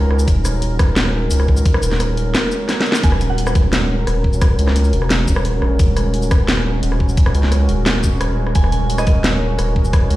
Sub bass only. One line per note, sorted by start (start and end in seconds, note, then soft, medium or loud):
0.00 0.26 C#2 loud
0.28 1.30 D#1 loud
1.31 1.64 C#2 loud
1.83 2.35 D#1 loud
3.04 4.06 D#1 loud
4.07 4.57 D#1 loud
4.59 4.92 C#2 loud
4.93 5.26 E1 medium
5.28 5.61 D#1 loud
5.62 5.78 A#1 loud
5.79 6.82 D#1 loud
6.83 7.33 D#1 loud
7.35 7.68 C#2 loud
7.69 8.19 D#1 medium
8.21 8.54 D#1 loud
8.55 9.57 D#1 loud
9.59 10.09 D#1 loud
10.11 10.16 C#2 loud